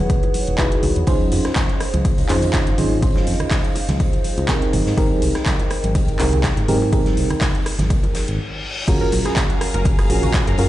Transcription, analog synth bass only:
0, 0, Header, 1, 2, 480
1, 0, Start_track
1, 0, Tempo, 487805
1, 1057, Time_signature, 4, 2, 24, 8
1, 10516, End_track
2, 0, Start_track
2, 0, Title_t, "Analog synth bass"
2, 0, Program_c, 0, 38
2, 0, Note_on_c, 0, 28, 91
2, 129, Note_off_c, 0, 28, 0
2, 467, Note_on_c, 0, 28, 90
2, 751, Note_off_c, 0, 28, 0
2, 817, Note_on_c, 0, 35, 101
2, 898, Note_off_c, 0, 35, 0
2, 947, Note_on_c, 0, 40, 84
2, 1016, Note_off_c, 0, 40, 0
2, 1056, Note_on_c, 0, 37, 98
2, 1214, Note_off_c, 0, 37, 0
2, 1297, Note_on_c, 0, 41, 84
2, 1378, Note_off_c, 0, 41, 0
2, 1907, Note_on_c, 0, 37, 91
2, 2050, Note_off_c, 0, 37, 0
2, 2147, Note_on_c, 0, 37, 101
2, 2216, Note_off_c, 0, 37, 0
2, 2256, Note_on_c, 0, 41, 90
2, 2549, Note_off_c, 0, 41, 0
2, 2626, Note_on_c, 0, 32, 90
2, 2695, Note_off_c, 0, 32, 0
2, 2735, Note_on_c, 0, 32, 96
2, 3150, Note_off_c, 0, 32, 0
2, 3215, Note_on_c, 0, 41, 85
2, 3297, Note_off_c, 0, 41, 0
2, 3826, Note_on_c, 0, 37, 91
2, 3969, Note_off_c, 0, 37, 0
2, 4306, Note_on_c, 0, 37, 90
2, 4591, Note_off_c, 0, 37, 0
2, 4656, Note_on_c, 0, 32, 103
2, 4738, Note_off_c, 0, 32, 0
2, 4786, Note_on_c, 0, 44, 84
2, 4855, Note_off_c, 0, 44, 0
2, 4896, Note_on_c, 0, 32, 100
2, 5054, Note_off_c, 0, 32, 0
2, 5137, Note_on_c, 0, 36, 84
2, 5218, Note_off_c, 0, 36, 0
2, 5746, Note_on_c, 0, 32, 91
2, 5889, Note_off_c, 0, 32, 0
2, 5986, Note_on_c, 0, 32, 102
2, 6055, Note_off_c, 0, 32, 0
2, 6097, Note_on_c, 0, 36, 90
2, 6389, Note_off_c, 0, 36, 0
2, 6467, Note_on_c, 0, 44, 93
2, 6536, Note_off_c, 0, 44, 0
2, 6577, Note_on_c, 0, 44, 101
2, 6991, Note_off_c, 0, 44, 0
2, 7057, Note_on_c, 0, 36, 84
2, 7138, Note_off_c, 0, 36, 0
2, 7667, Note_on_c, 0, 32, 89
2, 7810, Note_off_c, 0, 32, 0
2, 8147, Note_on_c, 0, 32, 90
2, 8257, Note_off_c, 0, 32, 0
2, 8737, Note_on_c, 0, 30, 104
2, 8894, Note_off_c, 0, 30, 0
2, 8977, Note_on_c, 0, 34, 83
2, 9058, Note_off_c, 0, 34, 0
2, 9587, Note_on_c, 0, 30, 90
2, 9730, Note_off_c, 0, 30, 0
2, 9828, Note_on_c, 0, 30, 103
2, 9896, Note_off_c, 0, 30, 0
2, 9937, Note_on_c, 0, 34, 90
2, 10229, Note_off_c, 0, 34, 0
2, 10307, Note_on_c, 0, 42, 93
2, 10376, Note_off_c, 0, 42, 0
2, 10417, Note_on_c, 0, 42, 99
2, 10516, Note_off_c, 0, 42, 0
2, 10516, End_track
0, 0, End_of_file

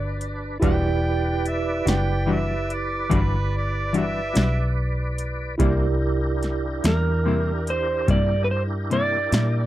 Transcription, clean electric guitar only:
0, 0, Header, 1, 2, 480
1, 0, Start_track
1, 0, Key_signature, 1, "minor"
1, 0, Tempo, 828729
1, 360, Time_signature, 12, 3, 24, 8
1, 5597, End_track
2, 0, Start_track
2, 0, Title_t, "Clean electric guitar"
2, 0, Program_c, 0, 27
2, 359, Note_on_c, 0, 52, 77
2, 361, Note_on_c, 0, 55, 89
2, 366, Note_on_c, 0, 62, 90
2, 368, Note_on_c, 0, 66, 87
2, 504, Note_off_c, 0, 52, 0
2, 505, Note_off_c, 0, 55, 0
2, 508, Note_off_c, 0, 62, 0
2, 508, Note_off_c, 0, 66, 0
2, 1076, Note_on_c, 0, 66, 56
2, 1085, Note_on_c, 0, 62, 47
2, 1092, Note_on_c, 0, 55, 43
2, 1223, Note_off_c, 0, 66, 0
2, 1227, Note_off_c, 0, 62, 0
2, 1230, Note_off_c, 0, 55, 0
2, 1310, Note_on_c, 0, 52, 54
2, 1316, Note_on_c, 0, 55, 61
2, 1319, Note_on_c, 0, 62, 60
2, 1323, Note_on_c, 0, 66, 68
2, 1460, Note_off_c, 0, 52, 0
2, 1463, Note_off_c, 0, 55, 0
2, 1464, Note_off_c, 0, 62, 0
2, 1466, Note_off_c, 0, 66, 0
2, 1793, Note_on_c, 0, 52, 76
2, 1795, Note_on_c, 0, 55, 86
2, 1800, Note_on_c, 0, 66, 82
2, 1801, Note_on_c, 0, 62, 87
2, 1941, Note_off_c, 0, 52, 0
2, 1942, Note_off_c, 0, 55, 0
2, 1945, Note_off_c, 0, 62, 0
2, 1945, Note_off_c, 0, 66, 0
2, 2276, Note_on_c, 0, 52, 54
2, 2280, Note_on_c, 0, 55, 59
2, 2285, Note_on_c, 0, 62, 65
2, 2289, Note_on_c, 0, 66, 68
2, 2423, Note_off_c, 0, 52, 0
2, 2425, Note_off_c, 0, 55, 0
2, 2427, Note_off_c, 0, 62, 0
2, 2429, Note_off_c, 0, 66, 0
2, 2512, Note_on_c, 0, 66, 44
2, 2518, Note_on_c, 0, 62, 41
2, 2526, Note_on_c, 0, 55, 41
2, 2661, Note_off_c, 0, 66, 0
2, 2664, Note_off_c, 0, 62, 0
2, 2668, Note_off_c, 0, 55, 0
2, 3239, Note_on_c, 0, 48, 77
2, 3243, Note_on_c, 0, 55, 76
2, 3245, Note_on_c, 0, 58, 88
2, 3245, Note_on_c, 0, 64, 85
2, 3384, Note_off_c, 0, 48, 0
2, 3386, Note_off_c, 0, 55, 0
2, 3387, Note_off_c, 0, 58, 0
2, 3387, Note_off_c, 0, 64, 0
2, 3960, Note_on_c, 0, 64, 46
2, 3967, Note_on_c, 0, 58, 42
2, 3973, Note_on_c, 0, 55, 38
2, 4105, Note_off_c, 0, 64, 0
2, 4108, Note_off_c, 0, 58, 0
2, 4111, Note_off_c, 0, 55, 0
2, 4203, Note_on_c, 0, 48, 55
2, 4206, Note_on_c, 0, 55, 54
2, 4210, Note_on_c, 0, 58, 54
2, 4215, Note_on_c, 0, 64, 57
2, 4346, Note_off_c, 0, 48, 0
2, 4347, Note_off_c, 0, 55, 0
2, 4349, Note_off_c, 0, 58, 0
2, 4352, Note_off_c, 0, 64, 0
2, 4678, Note_on_c, 0, 48, 74
2, 4682, Note_on_c, 0, 55, 70
2, 4684, Note_on_c, 0, 58, 72
2, 4689, Note_on_c, 0, 64, 73
2, 4823, Note_off_c, 0, 48, 0
2, 4825, Note_off_c, 0, 55, 0
2, 4826, Note_off_c, 0, 58, 0
2, 4828, Note_off_c, 0, 64, 0
2, 5158, Note_on_c, 0, 48, 49
2, 5164, Note_on_c, 0, 55, 51
2, 5167, Note_on_c, 0, 58, 53
2, 5172, Note_on_c, 0, 64, 62
2, 5303, Note_off_c, 0, 48, 0
2, 5306, Note_off_c, 0, 55, 0
2, 5308, Note_off_c, 0, 58, 0
2, 5310, Note_off_c, 0, 64, 0
2, 5398, Note_on_c, 0, 64, 47
2, 5406, Note_on_c, 0, 58, 37
2, 5411, Note_on_c, 0, 55, 35
2, 5543, Note_off_c, 0, 64, 0
2, 5547, Note_off_c, 0, 58, 0
2, 5549, Note_off_c, 0, 55, 0
2, 5597, End_track
0, 0, End_of_file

